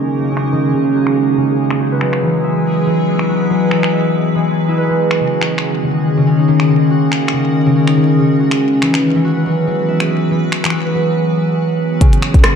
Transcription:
0.00 0.57 C#3 medium
0.00 1.80 C#3 medium
0.00 5.20 F#3 medium
0.00 11.16 G#3 medium
0.00 0.21 A#3 medium
0.00 1.80 A#3 medium
0.00 0.31 C#4 medium
0.00 0.42 D#4 medium
0.00 3.08 D#4 medium
0.00 0.94 F#4 medium
0.00 11.16 G#4 medium
0.00 1.80 A#4 medium
0.22 1.70 A#3 medium
0.31 3.21 C#4 medium
0.37 finger snap medium
0.43 2.28 D#4 medium
0.52 0.78 D#3 medium
0.73 1.36 C#3 medium
0.95 1.79 F#4 medium
1.07 finger snap soft
1.37 1.85 C#3 medium
1.71 1.98 A#3 medium
1.71 finger snap medium
1.80 5.20 E3 medium
1.80 3.28 F#4 medium
1.92 3.40 B4 medium
2.01 3.49 F#3 medium
2.01 5.20 B4 medium
2.01 finger snap medium
2.13 finger snap medium
2.22 2.85 E3 medium
2.30 12.56 F#4 medium
2.44 3.92 E5 medium
2.75 5.20 B3 medium
2.86 3.70 E3 medium
3.19 4.68 E4 medium
3.19 finger snap soft
3.29 5.41 F#4 medium
3.41 4.77 B4 medium
3.50 5.25 F#3 medium
3.71 4.34 E3 medium
3.71 finger snap medium
3.83 finger snap medium
3.93 5.65 E5 medium
4.35 4.88 E3 medium
4.68 6.45 E4 medium
4.78 6.83 B4 medium
4.90 5.25 E3 medium
5.11 finger snap medium
5.20 5.83 C#3 medium
5.20 8.61 D#3 medium
5.41 6.90 F#4 medium
5.41 finger snap medium
5.51 8.61 A#3 medium
5.58 finger snap medium
5.75 9.69 C#4 medium
5.84 6.16 C#3 medium
6.17 6.53 C#3 medium
6.27 7.75 C#4 medium
6.39 7.87 D#4 medium
6.48 6.74 D#3 loud
6.60 finger snap medium
6.69 7.32 C#3 medium
6.74 8.61 A#4 medium
6.91 8.39 F#4 medium
7.12 finger snap medium
7.28 finger snap medium
7.33 7.65 C#3 medium
7.66 8.02 C#3 medium
7.76 10.65 C#4 medium
7.88 8.88 D#4 medium
7.88 finger snap soft
7.97 8.23 D#3 medium
8.18 8.66 C#3 medium
8.39 9.24 F#4 medium
8.51 finger snap medium
8.61 12.01 E3 medium
8.82 9.14 E3 medium
8.82 12.01 F#3 medium
8.82 finger snap medium
8.94 finger snap medium
9.03 12.01 B3 medium
9.15 9.66 E3 medium
9.24 10.73 F#4 medium
9.36 10.85 B4 medium
9.46 10.94 F#3 medium
9.67 10.30 E3 medium
9.67 12.01 B4 medium
9.88 11.61 E5 medium
10.00 finger snap medium
10.31 10.63 E3 medium
10.52 finger snap medium
10.64 12.06 E3 medium
10.64 finger snap medium
10.66 finger snap medium
10.70 12.56 F#4 medium
10.70 finger snap soft
10.85 12.50 B4 medium
10.95 12.06 F#3 medium
12.01 12.56 C#3 loud
12.01 12.56 D#3 medium
12.01 kick loud
12.01 closed hi-hat medium
12.13 closed hi-hat soft
12.22 finger snap medium
12.34 kick loud
12.34 closed hi-hat soft
12.42 12.56 A#3 medium
12.42 finger snap medium
12.42 cross-stick loud
12.42 closed hi-hat medium

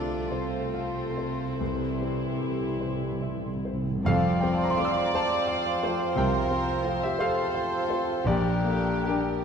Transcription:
0.00 1.57 C2 medium
0.00 3.79 C2 soft
0.00 0.29 D3 soft
0.00 1.27 F3 soft
0.00 0.29 A3 soft
0.00 1.56 A3 soft
0.00 0.16 C4 soft
0.00 0.31 D4 medium
0.00 0.29 F4 soft
0.00 1.56 F4 soft
0.00 0.58 A4 soft
0.00 1.23 A4 medium
0.00 3.39 A4 soft
0.00 0.30 D5 medium
0.29 2.80 C3 soft
0.29 1.44 A3 soft
0.29 2.79 C4 soft
0.29 1.44 F4 soft
0.29 1.00 C5 soft
0.29 2.81 C5 soft
0.33 3.67 C6 soft
0.74 1.43 F5 soft
1.18 1.60 C5 soft
1.58 4.01 C2 soft
1.58 3.66 E3 soft
1.58 3.67 G3 soft
1.58 3.84 C4 soft
1.58 3.84 E4 soft
1.58 3.71 E4 soft
1.58 3.65 G4 soft
2.02 2.65 C4 soft
2.08 2.16 C3 soft
2.17 2.24 C3 soft
2.25 2.32 C3 soft
2.33 2.41 C3 soft
2.40 2.49 C3 soft
2.40 3.06 G4 soft
2.50 2.58 C3 soft
2.59 2.67 C3 soft
2.68 2.75 C3 soft
2.77 2.83 C3 soft
2.81 2.91 C3 soft
2.81 3.48 C5 soft
2.92 3.01 C3 medium
3.02 3.10 C3 soft
3.11 3.18 C3 medium
3.19 3.27 C3 medium
3.19 3.89 E5 soft
3.28 3.36 C3 medium
3.37 3.45 C3 medium
3.46 3.54 C3 medium
3.55 3.63 C3 medium
3.64 3.72 C3 medium
3.64 4.05 C5 soft
3.73 3.80 C3 medium
3.82 3.89 C3 medium
3.90 3.95 C3 medium
3.97 4.04 C3 medium
4.04 4.93 F1 medium
4.04 6.12 F2 medium
4.04 4.94 F2 medium
4.04 5.09 C4 medium
4.04 5.10 F4 medium
4.04 4.36 A4 medium
4.04 5.10 C5 medium
4.04 6.12 D5 loud
4.04 4.36 F5 loud
4.04 5.10 F5 medium
4.40 5.00 C4 medium
4.40 4.51 A#4 medium
4.40 4.51 G5 medium
4.52 4.61 C5 soft
4.52 4.61 A5 medium
4.62 4.69 D5 medium
4.62 4.69 A#5 medium
4.69 4.75 E5 medium
4.69 4.75 C6 medium
4.77 4.91 F3 medium
4.77 5.05 A3 medium
4.77 5.35 F4 medium
4.77 4.91 F4 medium
4.77 5.05 F4 medium
4.77 4.82 F5 medium
4.77 4.82 D6 medium
4.82 4.89 G5 medium
4.82 4.90 E6 medium
4.90 4.97 F5 medium
4.90 4.97 D6 medium
4.96 5.05 E5 medium
4.96 5.04 C6 medium
5.05 5.14 D5 medium
5.05 5.14 A#5 medium
5.13 7.15 C4 medium
5.13 7.16 F4 medium
5.13 7.15 C5 medium
5.13 6.16 C5 medium
5.13 5.69 C5 medium
5.13 7.16 F5 medium
5.13 6.13 A5 medium
5.47 6.02 F5 medium
5.83 5.95 F3 medium
5.83 6.08 A3 medium
5.83 6.08 F4 medium
5.83 5.95 F4 medium
5.83 6.37 C5 medium
6.16 6.99 C2 medium
6.16 6.70 C3 medium
6.16 7.02 A#4 medium
6.16 6.98 A#4 medium
6.16 8.26 C5 medium
6.16 6.98 G5 medium
6.51 7.05 C4 medium
6.84 6.97 F3 medium
6.84 7.10 A3 medium
6.84 7.10 F4 medium
6.84 7.41 F4 medium
6.84 6.97 F4 medium
7.01 7.19 G4 medium
7.01 7.19 E5 medium
7.18 8.28 C4 medium
7.18 8.28 F4 medium
7.18 8.25 A4 medium
7.18 8.23 A4 medium
7.18 7.76 C5 medium
7.18 8.30 C5 medium
7.18 7.53 F5 medium
7.18 8.28 F5 medium
7.54 8.11 F5 medium
7.90 8.04 F3 medium
7.90 8.17 A3 medium
7.90 8.17 F4 medium
7.90 8.04 F4 medium
7.90 8.26 C5 medium
8.25 9.25 A#1 medium
8.25 9.45 A#1 medium
8.25 9.26 A#2 medium
8.25 9.45 G3 medium
8.25 9.45 D4 medium
8.25 9.45 G4 medium
8.25 9.03 G4 medium
8.25 8.64 A#4 medium
8.25 9.45 A#4 medium
8.25 9.43 D5 medium
8.25 9.45 G5 medium
8.64 9.31 A#3 medium
8.64 9.05 A4 medium
9.05 9.21 G3 medium
9.05 9.22 D4 medium
9.05 9.45 G4 medium
9.05 9.38 G4 medium
9.05 9.45 A#4 medium
9.09 9.38 A#3 medium

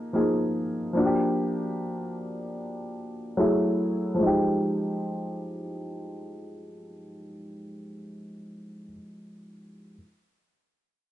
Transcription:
0.00 0.11 D#4 medium
0.00 0.12 G#4 medium
0.13 0.92 F3 soft
0.13 0.93 A#3 soft
0.13 0.95 D#4 soft
0.13 0.96 G#4 soft
0.93 3.33 F3 medium
0.93 3.34 A#3 medium
0.93 3.35 D4 medium
0.99 1.05 F#4 medium
1.06 3.39 G4 medium
3.37 4.19 F#3 medium
3.37 4.19 A3 medium
3.37 4.20 E4 medium
3.37 4.20 G#4 medium
4.15 8.85 F3 medium
4.15 8.89 G#3 medium
4.23 8.91 D#4 medium
4.23 8.93 G4 medium

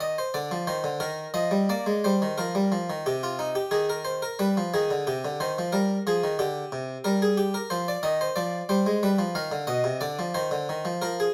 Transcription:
0.00 0.15 D#3 soft
0.00 0.17 D#5 medium
0.18 0.35 C5 medium
0.34 0.50 D3 medium
0.34 0.68 D5 medium
0.51 0.67 F3 medium
0.67 0.83 D#3 medium
0.67 1.01 C5 medium
0.84 1.00 D3 medium
1.00 1.25 D#3 medium
1.00 1.30 A#4 medium
1.34 1.51 F3 medium
1.34 1.69 D#5 medium
1.51 1.68 G3 medium
1.69 1.86 A#3 medium
1.69 2.04 D5 medium
1.86 2.03 G#3 medium
2.04 2.21 G3 medium
2.04 2.38 C5 medium
2.22 2.38 D#3 medium
2.38 2.54 F3 medium
2.38 3.05 A#4 medium
2.55 2.71 G3 medium
2.72 2.88 F3 medium
2.90 3.05 D#3 medium
3.06 3.54 C3 medium
3.06 3.22 G4 medium
3.23 3.39 F4 medium
3.39 3.55 D#4 medium
3.55 3.72 G4 medium
3.71 4.20 D#3 medium
3.71 3.88 G#4 medium
3.90 4.06 A#4 medium
4.05 4.22 C5 medium
4.22 4.39 A#4 medium
4.39 4.56 G3 medium
4.39 4.73 B4 medium
4.57 4.73 F3 medium
4.74 4.89 D#3 medium
4.74 5.07 G#4 medium
4.91 5.06 D3 medium
5.07 5.23 C3 medium
5.07 5.35 G4 medium
5.25 5.40 D3 medium
5.40 5.56 D#3 medium
5.40 5.73 C5 medium
5.58 5.73 F3 medium
5.72 5.97 G3 medium
5.72 6.01 A#4 medium
6.07 6.22 F3 medium
6.07 6.35 G#4 medium
6.24 6.39 D#3 medium
6.39 6.63 D3 medium
6.39 7.05 G4 medium
6.72 6.96 C3 medium
7.04 7.53 G3 medium
7.04 7.21 A#4 loud
7.22 7.38 G#4 medium
7.38 7.54 G4 medium
7.54 7.71 A#4 medium
7.70 7.95 F3 medium
7.70 7.87 C5 medium
7.88 8.04 D5 medium
8.03 8.27 D#3 medium
8.03 8.20 D#5 medium
8.21 8.37 C5 medium
8.36 8.61 F3 medium
8.36 8.69 D5 medium
8.69 8.85 G3 medium
8.69 8.97 C5 medium
8.86 9.02 G#3 medium
9.03 9.18 G3 medium
9.03 9.31 B4 medium
9.19 9.34 F3 medium
9.35 9.51 D#3 medium
9.35 9.63 F5 medium
9.52 9.67 D3 medium
9.67 9.84 B2 medium
9.67 9.96 D#5 medium
9.84 10.00 C3 medium
10.01 10.17 D3 medium
10.01 10.29 D5 medium
10.19 10.34 F3 medium
10.34 10.50 D#3 medium
10.34 11.01 C5 medium
10.51 10.67 D3 medium
10.69 10.84 D#3 medium
10.85 11.00 F3 medium
11.02 11.26 F3 medium
11.02 11.18 A#4 loud
11.20 11.34 G#4 medium

